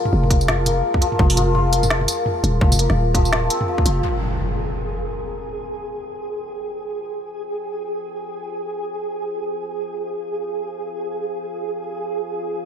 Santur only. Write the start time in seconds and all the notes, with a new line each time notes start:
Already playing: F3 G3 A#3 C4 F4
0.48 F3
0.66 A#3
1.01 F3
1.19 F3
1.37 F3
1.55 F4
2.61 F3
2.79 A#3
3.14 F3
3.32 F3
3.50 C4
3.68 F3
3.86 F3